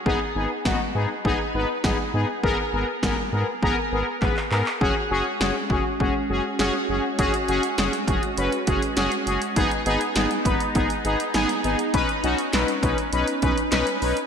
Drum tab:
HH |----------------|----------------|----------------|xxxxxxxxxxxxxxxx|
CP |----------------|------------xxxx|----------------|----------------|
SD |----o-------o---|----o-----------|----o-------o---|----o-------o---|
BD |o---o---o---o---|o---o---o---o---|o-----o-o-------|o-----o---o-----|

HH |xxxxxxxxxxxxxxxx|xxxxxxxxxxxxxxox|
CP |----------------|----x-------x---|
SD |----o-------o---|----o-------o---|
BD |o-----o-o-------|o-----o---o-----|